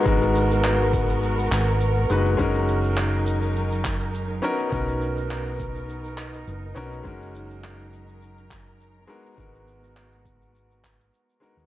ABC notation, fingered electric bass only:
X:1
M:4/4
L:1/16
Q:"Swing 16ths" 1/4=103
K:G#dor
V:1 name="Fingered electric bass" clef=bass
G,,,8- G,,,2 G,,,4 F,,,2 | F,,,12- F,,,2 z2 | B,,,12 F,,,2 B,,,2 | F,,,12- F,,,2 z2 |
G,,,12 z3 D,, |]